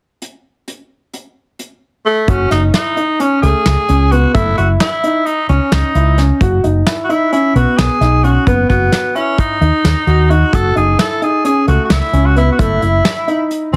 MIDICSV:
0, 0, Header, 1, 5, 480
1, 0, Start_track
1, 0, Tempo, 458365
1, 229, Time_signature, 9, 3, 24, 8
1, 14414, End_track
2, 0, Start_track
2, 0, Title_t, "Tenor saxophone"
2, 0, Program_c, 0, 66
2, 2158, Note_on_c, 0, 57, 73
2, 2400, Note_on_c, 0, 61, 77
2, 2416, Note_off_c, 0, 57, 0
2, 2630, Note_off_c, 0, 61, 0
2, 2636, Note_on_c, 0, 63, 72
2, 2743, Note_off_c, 0, 63, 0
2, 2879, Note_on_c, 0, 63, 82
2, 3354, Note_on_c, 0, 61, 77
2, 3370, Note_off_c, 0, 63, 0
2, 3578, Note_off_c, 0, 61, 0
2, 3585, Note_on_c, 0, 68, 92
2, 4311, Note_on_c, 0, 66, 84
2, 4327, Note_off_c, 0, 68, 0
2, 4543, Note_off_c, 0, 66, 0
2, 4549, Note_on_c, 0, 64, 87
2, 4774, Note_off_c, 0, 64, 0
2, 4792, Note_on_c, 0, 66, 75
2, 4900, Note_off_c, 0, 66, 0
2, 5038, Note_on_c, 0, 64, 82
2, 5508, Note_on_c, 0, 63, 82
2, 5524, Note_off_c, 0, 64, 0
2, 5743, Note_off_c, 0, 63, 0
2, 5749, Note_on_c, 0, 61, 66
2, 5974, Note_off_c, 0, 61, 0
2, 6004, Note_on_c, 0, 63, 70
2, 6501, Note_off_c, 0, 63, 0
2, 7374, Note_on_c, 0, 66, 56
2, 7437, Note_on_c, 0, 64, 68
2, 7453, Note_off_c, 0, 66, 0
2, 7669, Note_off_c, 0, 64, 0
2, 7675, Note_on_c, 0, 64, 72
2, 7897, Note_off_c, 0, 64, 0
2, 7920, Note_on_c, 0, 66, 74
2, 8146, Note_on_c, 0, 68, 85
2, 8161, Note_off_c, 0, 66, 0
2, 8629, Note_on_c, 0, 66, 83
2, 8645, Note_off_c, 0, 68, 0
2, 8866, Note_off_c, 0, 66, 0
2, 8873, Note_on_c, 0, 59, 74
2, 9095, Note_off_c, 0, 59, 0
2, 9102, Note_on_c, 0, 59, 75
2, 9588, Note_on_c, 0, 61, 71
2, 9603, Note_off_c, 0, 59, 0
2, 9830, Note_on_c, 0, 63, 82
2, 9846, Note_off_c, 0, 61, 0
2, 10790, Note_on_c, 0, 66, 80
2, 10805, Note_off_c, 0, 63, 0
2, 11042, Note_on_c, 0, 69, 92
2, 11057, Note_off_c, 0, 66, 0
2, 11271, Note_off_c, 0, 69, 0
2, 11277, Note_on_c, 0, 68, 83
2, 11497, Note_off_c, 0, 68, 0
2, 11519, Note_on_c, 0, 69, 86
2, 11758, Note_on_c, 0, 68, 82
2, 11773, Note_off_c, 0, 69, 0
2, 11993, Note_off_c, 0, 68, 0
2, 11999, Note_on_c, 0, 68, 83
2, 12218, Note_off_c, 0, 68, 0
2, 12234, Note_on_c, 0, 66, 75
2, 12387, Note_off_c, 0, 66, 0
2, 12406, Note_on_c, 0, 66, 60
2, 12482, Note_on_c, 0, 64, 79
2, 12498, Note_off_c, 0, 66, 0
2, 12832, Note_on_c, 0, 66, 73
2, 12847, Note_off_c, 0, 64, 0
2, 12950, Note_off_c, 0, 66, 0
2, 12957, Note_on_c, 0, 64, 76
2, 13107, Note_off_c, 0, 64, 0
2, 13112, Note_on_c, 0, 66, 54
2, 13186, Note_on_c, 0, 64, 76
2, 13201, Note_off_c, 0, 66, 0
2, 14102, Note_off_c, 0, 64, 0
2, 14378, Note_on_c, 0, 61, 75
2, 14414, Note_off_c, 0, 61, 0
2, 14414, End_track
3, 0, Start_track
3, 0, Title_t, "Grand piano"
3, 0, Program_c, 1, 0
3, 2387, Note_on_c, 1, 66, 78
3, 2596, Note_off_c, 1, 66, 0
3, 2626, Note_on_c, 1, 63, 62
3, 2835, Note_off_c, 1, 63, 0
3, 2867, Note_on_c, 1, 64, 71
3, 3076, Note_off_c, 1, 64, 0
3, 3105, Note_on_c, 1, 63, 61
3, 3315, Note_off_c, 1, 63, 0
3, 3347, Note_on_c, 1, 61, 72
3, 3556, Note_off_c, 1, 61, 0
3, 3589, Note_on_c, 1, 57, 61
3, 4005, Note_off_c, 1, 57, 0
3, 4071, Note_on_c, 1, 61, 61
3, 4278, Note_off_c, 1, 61, 0
3, 4309, Note_on_c, 1, 59, 66
3, 4518, Note_off_c, 1, 59, 0
3, 4547, Note_on_c, 1, 57, 75
3, 4756, Note_off_c, 1, 57, 0
3, 4792, Note_on_c, 1, 64, 65
3, 5207, Note_off_c, 1, 64, 0
3, 5272, Note_on_c, 1, 63, 62
3, 5687, Note_off_c, 1, 63, 0
3, 5751, Note_on_c, 1, 61, 64
3, 6166, Note_off_c, 1, 61, 0
3, 6234, Note_on_c, 1, 64, 67
3, 6441, Note_off_c, 1, 64, 0
3, 6473, Note_on_c, 1, 61, 64
3, 6680, Note_off_c, 1, 61, 0
3, 6714, Note_on_c, 1, 66, 78
3, 6921, Note_off_c, 1, 66, 0
3, 6951, Note_on_c, 1, 63, 59
3, 7159, Note_off_c, 1, 63, 0
3, 7189, Note_on_c, 1, 64, 68
3, 7398, Note_off_c, 1, 64, 0
3, 7426, Note_on_c, 1, 63, 62
3, 7636, Note_off_c, 1, 63, 0
3, 7669, Note_on_c, 1, 61, 74
3, 7878, Note_off_c, 1, 61, 0
3, 7908, Note_on_c, 1, 59, 66
3, 8325, Note_off_c, 1, 59, 0
3, 8387, Note_on_c, 1, 63, 68
3, 8596, Note_off_c, 1, 63, 0
3, 8627, Note_on_c, 1, 61, 65
3, 8837, Note_off_c, 1, 61, 0
3, 8865, Note_on_c, 1, 59, 81
3, 9075, Note_off_c, 1, 59, 0
3, 9109, Note_on_c, 1, 66, 61
3, 9525, Note_off_c, 1, 66, 0
3, 9586, Note_on_c, 1, 64, 60
3, 10003, Note_off_c, 1, 64, 0
3, 10064, Note_on_c, 1, 63, 61
3, 10482, Note_off_c, 1, 63, 0
3, 10545, Note_on_c, 1, 66, 68
3, 10755, Note_off_c, 1, 66, 0
3, 10785, Note_on_c, 1, 63, 67
3, 10995, Note_off_c, 1, 63, 0
3, 11025, Note_on_c, 1, 66, 76
3, 11235, Note_off_c, 1, 66, 0
3, 11263, Note_on_c, 1, 63, 62
3, 11473, Note_off_c, 1, 63, 0
3, 11504, Note_on_c, 1, 64, 69
3, 11713, Note_off_c, 1, 64, 0
3, 11746, Note_on_c, 1, 63, 59
3, 11955, Note_off_c, 1, 63, 0
3, 11985, Note_on_c, 1, 61, 74
3, 12194, Note_off_c, 1, 61, 0
3, 12225, Note_on_c, 1, 57, 62
3, 12641, Note_off_c, 1, 57, 0
3, 12705, Note_on_c, 1, 61, 66
3, 12913, Note_off_c, 1, 61, 0
3, 12944, Note_on_c, 1, 59, 68
3, 13153, Note_off_c, 1, 59, 0
3, 13185, Note_on_c, 1, 57, 81
3, 13393, Note_off_c, 1, 57, 0
3, 13418, Note_on_c, 1, 64, 62
3, 13836, Note_off_c, 1, 64, 0
3, 13901, Note_on_c, 1, 63, 65
3, 14317, Note_off_c, 1, 63, 0
3, 14379, Note_on_c, 1, 61, 63
3, 14414, Note_off_c, 1, 61, 0
3, 14414, End_track
4, 0, Start_track
4, 0, Title_t, "Fingered electric bass"
4, 0, Program_c, 2, 33
4, 2389, Note_on_c, 2, 30, 82
4, 2574, Note_off_c, 2, 30, 0
4, 2629, Note_on_c, 2, 30, 79
4, 2814, Note_off_c, 2, 30, 0
4, 3591, Note_on_c, 2, 37, 72
4, 3683, Note_off_c, 2, 37, 0
4, 3830, Note_on_c, 2, 37, 75
4, 3923, Note_off_c, 2, 37, 0
4, 4074, Note_on_c, 2, 37, 84
4, 4441, Note_off_c, 2, 37, 0
4, 4551, Note_on_c, 2, 30, 88
4, 4735, Note_off_c, 2, 30, 0
4, 4795, Note_on_c, 2, 30, 79
4, 4978, Note_off_c, 2, 30, 0
4, 5751, Note_on_c, 2, 37, 75
4, 5843, Note_off_c, 2, 37, 0
4, 5993, Note_on_c, 2, 37, 83
4, 6085, Note_off_c, 2, 37, 0
4, 6229, Note_on_c, 2, 37, 86
4, 6598, Note_off_c, 2, 37, 0
4, 6712, Note_on_c, 2, 30, 86
4, 6896, Note_off_c, 2, 30, 0
4, 6949, Note_on_c, 2, 30, 79
4, 7134, Note_off_c, 2, 30, 0
4, 7909, Note_on_c, 2, 35, 70
4, 8002, Note_off_c, 2, 35, 0
4, 8150, Note_on_c, 2, 35, 80
4, 8243, Note_off_c, 2, 35, 0
4, 8384, Note_on_c, 2, 35, 86
4, 8755, Note_off_c, 2, 35, 0
4, 8868, Note_on_c, 2, 30, 89
4, 9054, Note_off_c, 2, 30, 0
4, 9108, Note_on_c, 2, 30, 79
4, 9293, Note_off_c, 2, 30, 0
4, 10063, Note_on_c, 2, 39, 69
4, 10158, Note_off_c, 2, 39, 0
4, 10306, Note_on_c, 2, 39, 77
4, 10400, Note_off_c, 2, 39, 0
4, 10543, Note_on_c, 2, 39, 81
4, 10914, Note_off_c, 2, 39, 0
4, 11026, Note_on_c, 2, 30, 92
4, 11211, Note_off_c, 2, 30, 0
4, 11268, Note_on_c, 2, 30, 77
4, 11452, Note_off_c, 2, 30, 0
4, 12229, Note_on_c, 2, 37, 69
4, 12321, Note_off_c, 2, 37, 0
4, 12466, Note_on_c, 2, 37, 78
4, 12559, Note_off_c, 2, 37, 0
4, 12702, Note_on_c, 2, 37, 83
4, 13072, Note_off_c, 2, 37, 0
4, 13183, Note_on_c, 2, 30, 91
4, 13369, Note_off_c, 2, 30, 0
4, 13427, Note_on_c, 2, 30, 72
4, 13611, Note_off_c, 2, 30, 0
4, 14381, Note_on_c, 2, 37, 72
4, 14414, Note_off_c, 2, 37, 0
4, 14414, End_track
5, 0, Start_track
5, 0, Title_t, "Drums"
5, 228, Note_on_c, 9, 42, 50
5, 333, Note_off_c, 9, 42, 0
5, 709, Note_on_c, 9, 42, 46
5, 814, Note_off_c, 9, 42, 0
5, 1188, Note_on_c, 9, 42, 46
5, 1293, Note_off_c, 9, 42, 0
5, 1667, Note_on_c, 9, 42, 48
5, 1772, Note_off_c, 9, 42, 0
5, 2386, Note_on_c, 9, 42, 75
5, 2388, Note_on_c, 9, 36, 96
5, 2491, Note_off_c, 9, 42, 0
5, 2493, Note_off_c, 9, 36, 0
5, 2627, Note_on_c, 9, 38, 29
5, 2627, Note_on_c, 9, 42, 57
5, 2732, Note_off_c, 9, 38, 0
5, 2732, Note_off_c, 9, 42, 0
5, 2867, Note_on_c, 9, 38, 89
5, 2867, Note_on_c, 9, 42, 69
5, 2971, Note_off_c, 9, 38, 0
5, 2971, Note_off_c, 9, 42, 0
5, 3109, Note_on_c, 9, 42, 56
5, 3213, Note_off_c, 9, 42, 0
5, 3349, Note_on_c, 9, 42, 73
5, 3454, Note_off_c, 9, 42, 0
5, 3590, Note_on_c, 9, 42, 57
5, 3694, Note_off_c, 9, 42, 0
5, 3828, Note_on_c, 9, 38, 88
5, 3828, Note_on_c, 9, 42, 73
5, 3933, Note_off_c, 9, 38, 0
5, 3933, Note_off_c, 9, 42, 0
5, 4069, Note_on_c, 9, 42, 53
5, 4174, Note_off_c, 9, 42, 0
5, 4313, Note_on_c, 9, 42, 52
5, 4418, Note_off_c, 9, 42, 0
5, 4552, Note_on_c, 9, 36, 100
5, 4553, Note_on_c, 9, 42, 76
5, 4657, Note_off_c, 9, 36, 0
5, 4658, Note_off_c, 9, 42, 0
5, 4792, Note_on_c, 9, 42, 51
5, 4897, Note_off_c, 9, 42, 0
5, 5029, Note_on_c, 9, 38, 90
5, 5029, Note_on_c, 9, 42, 70
5, 5134, Note_off_c, 9, 38, 0
5, 5134, Note_off_c, 9, 42, 0
5, 5272, Note_on_c, 9, 42, 51
5, 5377, Note_off_c, 9, 42, 0
5, 5510, Note_on_c, 9, 42, 68
5, 5615, Note_off_c, 9, 42, 0
5, 5748, Note_on_c, 9, 42, 53
5, 5853, Note_off_c, 9, 42, 0
5, 5989, Note_on_c, 9, 38, 91
5, 5989, Note_on_c, 9, 42, 70
5, 6093, Note_off_c, 9, 38, 0
5, 6093, Note_off_c, 9, 42, 0
5, 6230, Note_on_c, 9, 42, 53
5, 6335, Note_off_c, 9, 42, 0
5, 6469, Note_on_c, 9, 38, 29
5, 6469, Note_on_c, 9, 42, 51
5, 6573, Note_off_c, 9, 38, 0
5, 6573, Note_off_c, 9, 42, 0
5, 6709, Note_on_c, 9, 42, 73
5, 6710, Note_on_c, 9, 36, 95
5, 6814, Note_off_c, 9, 42, 0
5, 6815, Note_off_c, 9, 36, 0
5, 6950, Note_on_c, 9, 42, 54
5, 7055, Note_off_c, 9, 42, 0
5, 7189, Note_on_c, 9, 38, 93
5, 7189, Note_on_c, 9, 42, 74
5, 7294, Note_off_c, 9, 38, 0
5, 7294, Note_off_c, 9, 42, 0
5, 7431, Note_on_c, 9, 42, 55
5, 7535, Note_off_c, 9, 42, 0
5, 7672, Note_on_c, 9, 42, 74
5, 7777, Note_off_c, 9, 42, 0
5, 7913, Note_on_c, 9, 42, 55
5, 8017, Note_off_c, 9, 42, 0
5, 8152, Note_on_c, 9, 38, 95
5, 8152, Note_on_c, 9, 42, 74
5, 8257, Note_off_c, 9, 38, 0
5, 8257, Note_off_c, 9, 42, 0
5, 8392, Note_on_c, 9, 38, 31
5, 8392, Note_on_c, 9, 42, 55
5, 8497, Note_off_c, 9, 38, 0
5, 8497, Note_off_c, 9, 42, 0
5, 8631, Note_on_c, 9, 42, 52
5, 8736, Note_off_c, 9, 42, 0
5, 8868, Note_on_c, 9, 36, 97
5, 8870, Note_on_c, 9, 42, 74
5, 8973, Note_off_c, 9, 36, 0
5, 8975, Note_off_c, 9, 42, 0
5, 9108, Note_on_c, 9, 36, 68
5, 9110, Note_on_c, 9, 42, 55
5, 9213, Note_off_c, 9, 36, 0
5, 9214, Note_off_c, 9, 42, 0
5, 9345, Note_on_c, 9, 38, 94
5, 9345, Note_on_c, 9, 42, 70
5, 9449, Note_off_c, 9, 38, 0
5, 9449, Note_off_c, 9, 42, 0
5, 9588, Note_on_c, 9, 42, 51
5, 9693, Note_off_c, 9, 42, 0
5, 9827, Note_on_c, 9, 36, 87
5, 9827, Note_on_c, 9, 42, 65
5, 9932, Note_off_c, 9, 36, 0
5, 9932, Note_off_c, 9, 42, 0
5, 10069, Note_on_c, 9, 42, 50
5, 10173, Note_off_c, 9, 42, 0
5, 10311, Note_on_c, 9, 38, 96
5, 10311, Note_on_c, 9, 42, 69
5, 10416, Note_off_c, 9, 38, 0
5, 10416, Note_off_c, 9, 42, 0
5, 10547, Note_on_c, 9, 42, 50
5, 10651, Note_off_c, 9, 42, 0
5, 10791, Note_on_c, 9, 42, 51
5, 10896, Note_off_c, 9, 42, 0
5, 11028, Note_on_c, 9, 36, 96
5, 11029, Note_on_c, 9, 42, 77
5, 11133, Note_off_c, 9, 36, 0
5, 11134, Note_off_c, 9, 42, 0
5, 11272, Note_on_c, 9, 42, 50
5, 11376, Note_off_c, 9, 42, 0
5, 11509, Note_on_c, 9, 38, 92
5, 11509, Note_on_c, 9, 42, 77
5, 11614, Note_off_c, 9, 38, 0
5, 11614, Note_off_c, 9, 42, 0
5, 11748, Note_on_c, 9, 42, 52
5, 11853, Note_off_c, 9, 42, 0
5, 11988, Note_on_c, 9, 42, 75
5, 12093, Note_off_c, 9, 42, 0
5, 12228, Note_on_c, 9, 42, 55
5, 12333, Note_off_c, 9, 42, 0
5, 12462, Note_on_c, 9, 38, 93
5, 12462, Note_on_c, 9, 42, 73
5, 12567, Note_off_c, 9, 38, 0
5, 12567, Note_off_c, 9, 42, 0
5, 12705, Note_on_c, 9, 42, 56
5, 12810, Note_off_c, 9, 42, 0
5, 12947, Note_on_c, 9, 42, 51
5, 13052, Note_off_c, 9, 42, 0
5, 13186, Note_on_c, 9, 36, 99
5, 13186, Note_on_c, 9, 42, 74
5, 13291, Note_off_c, 9, 36, 0
5, 13291, Note_off_c, 9, 42, 0
5, 13426, Note_on_c, 9, 42, 52
5, 13531, Note_off_c, 9, 42, 0
5, 13664, Note_on_c, 9, 38, 95
5, 13664, Note_on_c, 9, 42, 67
5, 13769, Note_off_c, 9, 38, 0
5, 13769, Note_off_c, 9, 42, 0
5, 13904, Note_on_c, 9, 42, 49
5, 14009, Note_off_c, 9, 42, 0
5, 14144, Note_on_c, 9, 42, 68
5, 14249, Note_off_c, 9, 42, 0
5, 14414, End_track
0, 0, End_of_file